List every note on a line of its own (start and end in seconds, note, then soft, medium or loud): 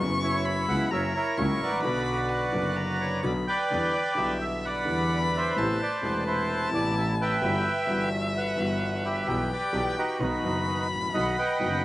0.00 0.64 F#1 loud
0.00 0.65 F#2 medium
0.00 0.64 C#3 medium
0.00 0.66 F#3 medium
0.00 0.65 B3 medium
0.00 0.66 E4 medium
0.00 0.46 C#6 loud
0.23 0.88 E4 medium
0.23 0.66 C#5 medium
0.45 0.92 B5 medium
0.68 0.88 C#2 medium
0.68 0.88 C#3 medium
0.68 0.88 F#3 medium
0.68 0.88 B3 medium
0.68 0.88 E4 medium
0.68 0.90 F#5 loud
0.91 1.11 F#1 medium
0.91 1.11 F#2 medium
0.91 1.11 C#3 medium
0.91 1.11 F#3 medium
0.91 1.11 A#3 medium
0.91 1.11 E4 medium
0.91 1.15 A#4 medium
0.91 1.13 C#5 medium
0.91 1.13 E5 medium
0.91 1.39 A#5 medium
1.15 1.81 E4 medium
1.15 1.81 A#4 medium
1.15 1.62 C#5 medium
1.37 1.57 C#2 medium
1.37 1.58 C#2 medium
1.37 1.58 C#3 medium
1.37 1.57 F#3 medium
1.37 1.58 A#3 medium
1.37 1.58 E4 medium
1.37 1.82 C#6 medium
1.60 1.83 A1 medium
1.60 3.22 F#4 medium
1.60 3.22 B4 medium
1.60 3.21 D5 medium
1.68 1.73 G#1 medium
1.73 1.78 A1 medium
1.79 1.84 A#1 medium
1.79 2.49 D3 medium
1.79 2.31 B5 medium
1.84 2.50 B1 medium
1.84 2.51 B1 medium
1.84 2.51 B2 medium
1.84 2.50 F#3 medium
1.84 2.51 B3 medium
1.84 2.51 F#4 medium
2.29 2.77 F#5 medium
2.52 3.20 F#1 medium
2.52 3.21 F#1 medium
2.52 3.21 F#2 medium
2.52 3.20 D3 medium
2.52 3.20 F#3 medium
2.52 3.21 B3 medium
2.52 3.22 F#4 medium
2.75 3.25 A#5 medium
3.01 3.25 C#5 medium
3.22 3.43 B1 medium
3.22 3.44 B1 medium
3.22 3.44 B2 medium
3.22 3.43 D3 medium
3.22 3.44 F#3 medium
3.22 3.43 B3 medium
3.22 3.44 F#4 medium
3.22 3.33 D5 medium
3.22 3.71 B5 medium
3.47 4.38 B4 medium
3.47 4.38 D5 medium
3.47 4.44 G5 loud
3.71 3.90 E2 medium
3.71 3.91 E2 medium
3.71 3.91 D3 medium
3.71 3.91 E3 medium
3.71 3.91 G3 medium
3.71 3.91 B3 medium
3.71 3.91 E4 medium
3.71 4.18 D5 medium
4.15 4.83 B1 medium
4.15 4.84 B2 medium
4.15 4.83 D3 medium
4.15 4.83 G3 medium
4.15 4.84 B3 medium
4.15 4.67 E5 medium
4.19 4.85 E4 medium
4.41 4.65 E5 medium
4.65 5.36 B4 medium
4.65 5.54 D5 medium
4.65 5.30 F#5 medium
4.65 5.59 B5 loud
4.85 5.53 E2 medium
4.85 5.52 D3 medium
4.85 5.53 E3 medium
4.85 5.53 G3 medium
4.85 5.53 B3 medium
4.85 5.54 E4 medium
5.37 5.81 B4 medium
5.37 6.24 C5 medium
5.37 5.79 E5 medium
5.56 5.76 A1 medium
5.56 5.76 A2 medium
5.56 5.76 C3 medium
5.56 5.76 A3 medium
5.56 5.76 B3 medium
5.56 5.76 E4 medium
5.56 6.03 A5 medium
5.82 6.70 B4 medium
5.82 6.24 D5 medium
6.01 6.69 E1 medium
6.01 6.69 E2 medium
6.01 6.69 B2 medium
6.01 6.68 C3 medium
6.01 6.69 A3 medium
6.01 6.70 E4 medium
6.01 7.43 A5 medium
6.27 7.16 E4 medium
6.27 6.70 C5 medium
6.70 7.38 A1 medium
6.70 7.39 A1 medium
6.70 7.39 A2 medium
6.70 7.37 C3 medium
6.70 7.38 A3 medium
6.70 7.39 B3 medium
6.74 7.39 E4 medium
6.74 6.95 D5 medium
6.98 7.08 E5 medium
7.21 8.09 B4 medium
7.21 8.09 E5 medium
7.21 8.09 G5 loud
7.41 7.62 G1 medium
7.41 7.62 G2 medium
7.41 7.61 E3 medium
7.41 7.61 G3 medium
7.41 7.61 B3 medium
7.41 7.62 F#4 medium
7.41 9.28 E5 medium
7.86 8.54 G1 medium
7.86 8.55 G1 medium
7.86 8.54 G2 medium
7.86 8.53 E3 medium
7.86 8.54 G3 medium
7.86 8.55 B3 medium
7.86 8.55 F#4 medium
8.14 8.34 E5 medium
8.37 9.04 B4 medium
8.37 9.08 F#5 medium
8.55 9.24 G1 medium
8.55 9.24 G2 medium
8.55 9.23 E3 medium
8.55 9.24 G3 medium
8.55 9.24 B3 medium
8.59 9.25 F#4 medium
9.05 9.51 G4 medium
9.05 9.51 B4 medium
9.05 9.49 E5 medium
9.27 9.47 B1 medium
9.27 9.47 B2 medium
9.27 9.47 E3 medium
9.27 9.47 G3 medium
9.27 9.47 B3 medium
9.27 9.48 G4 medium
9.27 10.22 G5 medium
9.53 10.18 G4 medium
9.53 9.97 B4 medium
9.53 9.95 D5 medium
9.73 9.93 B1 medium
9.73 9.94 B1 medium
9.73 9.93 B2 medium
9.73 9.93 E3 medium
9.73 9.93 G3 medium
9.73 9.93 B3 medium
9.73 9.93 G4 medium
9.97 10.87 D#4 medium
9.97 10.87 F#4 medium
9.97 10.88 B4 medium
10.20 10.40 B1 medium
10.20 10.40 B2 medium
10.20 10.40 D#3 medium
10.20 10.40 F#3 medium
10.20 10.40 B3 medium
10.20 10.40 F#4 medium
10.20 11.60 B5 medium
10.42 10.90 F#1 medium
10.42 11.11 F#1 medium
10.42 11.11 F#2 medium
10.42 11.10 D#3 medium
10.42 11.11 F#3 medium
10.42 11.11 B3 medium
10.46 11.12 F#4 medium
10.91 11.14 A1 medium
10.97 11.03 G#1 soft
11.02 11.08 A1 medium
11.09 11.15 A#1 medium
11.14 11.34 B1 medium
11.14 11.34 B2 medium
11.14 11.34 D#3 medium
11.14 11.34 F#3 medium
11.14 11.34 B3 medium
11.14 11.35 F#4 medium
11.14 11.37 D#5 medium
11.14 11.84 F#5 medium
11.14 11.37 B5 loud
11.39 11.83 B4 medium
11.39 11.84 D#5 medium
11.39 11.82 G5 medium
11.59 11.85 F#1 medium
11.59 11.85 F#2 medium
11.59 11.85 D#3 medium
11.59 11.85 F#3 medium
11.59 11.85 B3 medium
11.59 11.85 F#4 medium
11.59 11.85 B5 medium